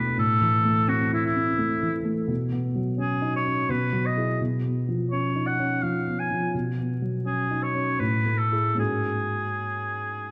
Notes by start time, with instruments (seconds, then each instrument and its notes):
Already playing: grand piano E2 B2 A3 D4 E4, oboe B4
0.17 grand piano A2, oboe A4
0.41 grand piano E3
0.65 grand piano A3
0.88 grand piano C4, oboe F#4
1.13 grand piano E4, oboe E4
1.25 oboe E4
1.36 grand piano C4
1.58 grand piano A3
1.83 grand piano E3
2.05 grand piano A3
2.27 grand piano B2
2.52 grand piano B3
2.75 grand piano F#3
2.97 grand piano C#4, oboe G#4
3.22 grand piano D#4
3.36 oboe C#5
3.45 grand piano C#4
3.69 grand piano B2, oboe B4
3.93 grand piano F#3
4.05 oboe D#5
4.16 grand piano E4 G#4
4.41 grand piano B2
4.64 grand piano B3
4.88 grand piano F3
5.11 grand piano C#4, oboe C#5
5.36 grand piano D#4
5.47 oboe F#5
5.59 grand piano C#4
5.83 grand piano F3, oboe F5
6.07 grand piano B3
6.19 oboe G#5
6.31 grand piano F3
6.54 grand piano B2
6.79 grand piano B3
7.02 grand piano F#3
7.25 grand piano C#4, oboe G#4
7.51 grand piano D#4
7.63 oboe C#5
7.75 grand piano C#4
7.99 grand piano A2, oboe B4
8.25 grand piano A3
8.38 oboe A4
8.51 grand piano E4 G#4
8.75 grand piano G#2 A#3 C#4 F#4 G#4
8.79 oboe G#4